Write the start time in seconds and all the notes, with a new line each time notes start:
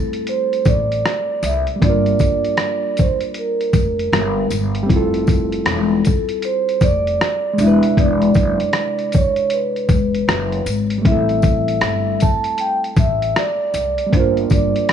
Already playing: G3 A3 C4 E4 A4
0.13 closed hi-hat
0.27 C5, closed hi-hat
0.53 closed hi-hat
0.65 A1 D5, kick, closed hi-hat, tambourine
0.92 closed hi-hat
1.06 cross-stick, closed hi-hat
1.43 C2 E5, closed hi-hat, tambourine
1.67 closed hi-hat
1.76 G3 A#3
1.82 G1 D4 D5, kick, closed hi-hat
1.86 F4 A#4
2.06 closed hi-hat
2.19 G1, kick, closed hi-hat, tambourine
2.45 closed hi-hat
2.57 cross-stick, closed hi-hat
2.97 C5, kick, closed hi-hat, tambourine
3.21 closed hi-hat
3.34 A#4, closed hi-hat
3.61 closed hi-hat
3.73 F1, kick, closed hi-hat, tambourine
3.99 closed hi-hat
4.12 G1, cross-stick, closed hi-hat
4.50 G1, closed hi-hat, tambourine
4.75 closed hi-hat
4.83 G3 C4
4.89 F1 E4 F4, kick, closed hi-hat
4.96 A4
5.14 closed hi-hat
5.27 kick, closed hi-hat, tambourine
5.52 closed hi-hat
5.66 E1, cross-stick, closed hi-hat
6.05 A4, kick, closed hi-hat, tambourine
6.29 closed hi-hat
6.42 C5, closed hi-hat
6.69 closed hi-hat
6.81 F1 D5, kick, closed hi-hat, tambourine
7.07 closed hi-hat
7.21 cross-stick, closed hi-hat
7.53 C3 G#3
7.58 E1 D4 E5, closed hi-hat, tambourine
7.64 E4 B4
7.83 closed hi-hat
7.97 E1 D5, kick, closed hi-hat
8.22 closed hi-hat
8.34 F#1, kick, closed hi-hat, tambourine
8.60 closed hi-hat
8.73 cross-stick, closed hi-hat
8.99 closed hi-hat
9.12 C#5, kick, closed hi-hat, tambourine
9.36 closed hi-hat
9.50 B4, closed hi-hat
9.76 closed hi-hat
9.89 E1, kick, closed hi-hat, tambourine
10.15 closed hi-hat
10.28 F#1, cross-stick, closed hi-hat
10.52 closed hi-hat
10.66 G#1, closed hi-hat, tambourine
10.90 closed hi-hat
10.98 G3 A3
11.05 A1 C4 E4 E5, kick, closed hi-hat
11.12 A4
11.29 closed hi-hat
11.42 kick, closed hi-hat, tambourine
11.68 closed hi-hat
11.81 G1, cross-stick, closed hi-hat
12.20 A5, kick, closed hi-hat, tambourine
12.44 closed hi-hat
12.58 G5, closed hi-hat
12.84 closed hi-hat
12.96 A1 E5, kick, closed hi-hat, tambourine
13.22 closed hi-hat
13.36 D5, cross-stick, closed hi-hat
13.74 C2, closed hi-hat, tambourine
13.98 closed hi-hat
14.06 G3 A#3
14.13 G1 D4 F4 C5, kick, closed hi-hat
14.20 A#4
14.37 closed hi-hat
14.50 G1 D5, kick, closed hi-hat, tambourine
14.76 closed hi-hat
14.89 cross-stick, closed hi-hat